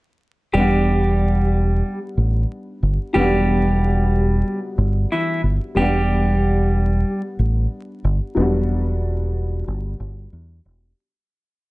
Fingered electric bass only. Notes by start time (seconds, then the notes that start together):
0.54 E1
2.17 A1
2.83 G1
3.15 E1
4.78 G1
5.43 G1
5.76 E1
7.39 A1
8.04 G1
8.37 E1
9.68 G1
10.00 G1
10.33 E2
10.65 E1